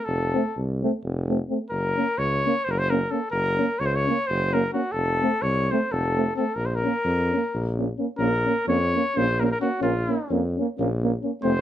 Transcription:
0.05 F1 A4
0.33 A3 C4
0.57 C2
0.83 A3 C4
1.05 F1
1.28 A3 C4
1.49 A3 C4
1.70 F#1 A#4
1.97 A#3 C#4
2.18 C#2 C#5
2.45 A#3 C#4
2.64 F#1 C5
2.71 A#4
2.79 C5
2.90 A#3 C#4 A#4
3.10 A#3 C#4 A4
3.31 F#1 A#4
3.57 A#3 C#4
3.79 C#2 C#5
3.86 C5
3.95 C#5
4.06 A#3 C#4
4.27 F#1 C5
4.53 A#3 C#4 A#4
4.73 A#3 C#4 F#4
4.92 F1 A4
5.22 A3 C4
5.42 C2 C#5
5.70 A3 C4 C5
5.92 F1 A4
6.16 A3 C4
6.36 A3 C4 A4
6.55 A#1 A#4
6.66 C5
6.75 A#4
6.83 A#3 C#4
7.05 F2
7.31 C#4
7.35 A#3
7.54 A#1
7.78 A#3 C#4
7.98 A#3 C#4
8.18 A#1 A#3 C#4 A#4
8.45 A#3 C#4
8.67 F2 A#3 C#4 C#5
8.94 A#3 C#4
9.16 A#1 A#3 C#4 C5
9.40 A#3 C#4 A#4
9.45 A#4
9.52 A#4
9.60 A#3 C#4 F#4
9.80 A#1 A#3 C#4 F4
10.08 A#3 C#4
10.29 F2 A#3 C#4
10.58 A#3 C#4
10.78 A#1 A#3 C#4
11.03 A#3 C#4
11.23 A#3 C#4
11.42 F1 A3 C4 C5

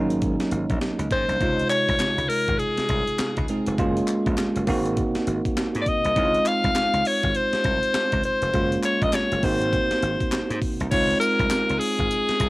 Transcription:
Already playing: G#1 F#3 A#3 C#4 D#4
0.10 closed hi-hat
0.22 kick, closed hi-hat
0.40 snare, closed hi-hat
0.51 G#1, closed hi-hat
0.70 A#1, kick, closed hi-hat
0.81 snare, closed hi-hat
0.99 C#2, closed hi-hat
1.11 G#2 C5, kick, closed hi-hat
1.28 C2, closed hi-hat
1.40 C#2 C3 G#3 D#4 F4, kick, closed hi-hat
1.59 closed hi-hat
1.70 C#5, clap, closed hi-hat
1.89 C2, kick, closed hi-hat
1.99 muted slap bass stroke, snare, clap, closed hi-hat
2.18 C#2, closed hi-hat
2.29 A#4, open hi-hat
2.48 G#1, kick, closed hi-hat
2.59 G#4, closed hi-hat
2.77 muted slap bass stroke, snare, closed hi-hat
2.89 C2, kick, closed hi-hat
3.07 closed hi-hat
3.19 muted slap bass stroke, snare, clap, closed hi-hat
3.37 C#2, kick, closed hi-hat
3.48 G#3 C4 D#4 G#4, closed hi-hat
3.66 F1, closed hi-hat
3.78 F#1 G#3 A#3 C#4 F4, kick, closed hi-hat
3.97 closed hi-hat
4.08 clap, closed hi-hat
4.26 A#1, kick, closed hi-hat
4.38 snare, clap, closed hi-hat
4.56 F#1, closed hi-hat
4.67 G#1 A#3 C4 D#4 F#4, kick, open hi-hat
4.86 closed hi-hat
4.97 kick, closed hi-hat
5.15 muted slap bass stroke, snare, closed hi-hat
5.27 G#1, closed hi-hat
5.45 kick, closed hi-hat
5.57 snare, clap, closed hi-hat
5.75 G#2, closed hi-hat
5.82 D5
5.86 D#5, kick, closed hi-hat
6.05 C2, closed hi-hat
6.16 C#2 G#3 C4 D#4 E4, kick, closed hi-hat
6.25 F4
6.34 closed hi-hat
6.45 F5, clap, closed hi-hat
6.64 C2, kick, closed hi-hat
6.75 muted slap bass stroke, snare, clap, closed hi-hat
6.93 C#2, closed hi-hat
7.05 C#5, open hi-hat
7.23 G#1, kick, closed hi-hat
7.34 C5, closed hi-hat
7.53 muted slap bass stroke, snare, closed hi-hat
7.64 C2, kick, closed hi-hat
7.83 closed hi-hat
7.94 muted slap bass stroke, snare, clap, closed hi-hat
8.12 C#2, kick, closed hi-hat
8.23 C5, closed hi-hat
8.42 F1, closed hi-hat
8.54 F#1 G#3 A#3 C#4 F4, kick, closed hi-hat
8.72 closed hi-hat
8.83 C#5, clap, closed hi-hat
9.02 A#1 D#5, kick, closed hi-hat
9.13 C#5, snare, clap, closed hi-hat
9.32 F#1, closed hi-hat
9.43 G#1 A#3 C4 D#4 F#4 C5, kick, open hi-hat
9.62 closed hi-hat
9.73 kick, closed hi-hat
9.91 muted slap bass stroke, snare, closed hi-hat
10.03 G#1, closed hi-hat
10.21 kick, closed hi-hat
10.32 snare, clap, closed hi-hat
10.50 G#2, closed hi-hat
10.62 kick, open hi-hat
10.80 C2, closed hi-hat
10.91 C#2 G#3 C4 D#4 F4 C#5, kick, closed hi-hat, crash, tambourine
11.10 closed hi-hat
11.20 A#4, closed hi-hat, tambourine
11.39 C2, kick, closed hi-hat
11.50 snare, clap, closed hi-hat, tambourine
11.70 C#2, closed hi-hat
11.79 G#4, open hi-hat
11.99 G#1, kick, closed hi-hat
12.11 closed hi-hat, tambourine
12.29 muted slap bass stroke, snare, closed hi-hat
12.40 C2, kick, closed hi-hat, tambourine

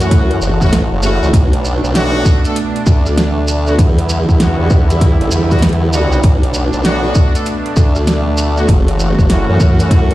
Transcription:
Already playing: F#2 E3 A3 F#4
0.00 A3 C#4 E4 F#4, closed hi-hat, shekere
0.11 kick, closed hi-hat, shekere
0.31 closed hi-hat
0.42 F#1, shekere
0.61 A3 C#4 E4 F#4, kick, cross-stick, shekere
0.72 A1, snare, closed hi-hat, shekere
0.92 F#1
1.03 A3 C#4 E4 F#4, shekere
1.22 C#2, shekere
1.33 B1 B2 D4, kick, closed hi-hat, shekere
1.53 closed hi-hat
1.65 shekere
1.84 B1, shekere
1.95 A3 B3 D4 F#4, snare, closed hi-hat, shekere
2.25 kick, shekere
2.45 A3 B3 D4 A4, closed hi-hat, shekere
2.56 closed hi-hat, shekere
2.76 closed hi-hat
2.86 D2, kick, shekere
3.06 cross-stick, shekere
3.18 snare, closed hi-hat, shekere
3.37 cross-stick
3.48 shekere
3.67 A3 B3 D4 F#4, shekere
3.78 E2 D3 G3 E4, kick, closed hi-hat, shekere
3.98 cross-stick, closed hi-hat
4.09 shekere
4.29 E2, kick, shekere
4.40 G3 B3 D4 F#4, snare, closed hi-hat, shekere
4.59 E2
4.70 E2, kick, shekere
4.90 G3 B3 D4 E4, closed hi-hat, shekere
5.01 kick, closed hi-hat, shekere
5.21 A1, closed hi-hat
5.31 E2, shekere
5.51 G3 B3 D4 F#4, kick, cross-stick, closed hi-hat, shekere
5.59 snare, closed hi-hat, shekere
5.62 closed hi-hat
5.69 closed hi-hat
5.73 closed hi-hat
5.93 G3 B3 D4 F#4, shekere
6.12 shekere
6.23 B1 B2 A3 D4, kick, closed hi-hat, shekere
6.43 closed hi-hat
6.54 shekere
6.73 B1, shekere
6.84 A3 B3 D4 F#4, snare, closed hi-hat, shekere
7.15 kick, shekere
7.35 A3 B3 D4 A4, closed hi-hat, shekere
7.46 closed hi-hat, shekere
7.66 closed hi-hat
7.76 D2, kick, shekere
7.95 cross-stick, shekere
8.07 snare, closed hi-hat, shekere
8.27 cross-stick
8.37 shekere
8.57 A3 B3 D4 F#4, shekere
8.68 F#1 E3 F#4, kick, closed hi-hat, shekere
8.88 cross-stick, closed hi-hat
8.99 shekere
9.19 F#1, kick, shekere
9.29 A3 C#4 E4 F#4, snare, closed hi-hat, shekere
9.49 F#2
9.60 F#2, kick, shekere
9.79 A3 C#4 E4 F#4, closed hi-hat, shekere
9.91 kick, closed hi-hat, shekere
10.11 closed hi-hat

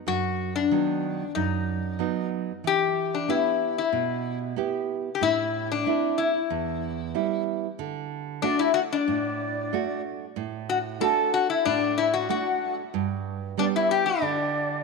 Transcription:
0.07 F#2 F#4
0.56 D4
0.71 D#3 F#3 B3
1.35 F#2 D#4
1.99 F#3 B3 D#4
2.64 E3 G4
3.15 D4
3.28 B3 E4 G4
3.78 E4
3.92 B2
4.56 B3 E4 G4
5.15 G4
5.21 A2 E4
5.72 D4
5.86 A3 C4 E4
6.18 E4
6.50 E2
7.14 G3 B3 E4
7.79 D3
8.42 A3 D4 F#4 D5
8.59 E4 E5
8.74 F#4 F#5
8.92 D4 D#5
8.97 D5
9.08 A2
9.73 A3 D4 F#4
10.36 A2
10.69 F#4 F#5
11.00 A3 D4 F#4 A4 A5
11.34 F#4 F#5
11.50 E4 E5
11.65 A2 D4 D5
11.98 E4 E5
12.14 F#4 F#5
12.29 A3 D4 F#4 F#5
12.94 G2
13.57 G3 B3 D4
13.62 D5
13.76 E4 E5
13.91 G4 G5
14.06 D4 D5
14.22 D3

